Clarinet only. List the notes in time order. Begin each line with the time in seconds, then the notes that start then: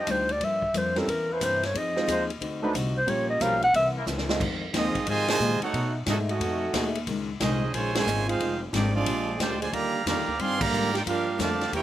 0.00 D#5
0.11 C5
0.31 D5
0.44 E5
0.77 C5
0.98 A4
1.10 A#4
1.32 B4
1.44 C5
1.66 C#5
1.78 D#5
2.97 C5
3.10 C#5
3.30 D#5
3.42 F5
3.63 F#5
3.76 E5